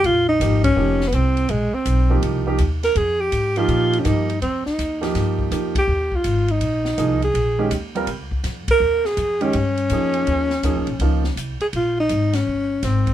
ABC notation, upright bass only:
X:1
M:4/4
L:1/8
Q:"Swing" 1/4=164
K:Bbdor
V:1 name="Upright bass" clef=bass
B,,,2 A,,,2 F,,,2 C,,2 | B,,, z _C,,2 =C,,2 E,,2 | F,,2 A,,2 B,,2 G,,2 | F,, z E,,2 G,,2 F,,2 |
E,,2 A,,,2 B,,,2 C,,2 | B,,,2 E,,2 D,,2 F,, z | E,,2 F,,2 G,,2 F,,2 | E,,2 (3=D,, _D,, B,,, D,,2 C,, z |
B,,,2 A,,,2 G,,,2 A,,,2 |]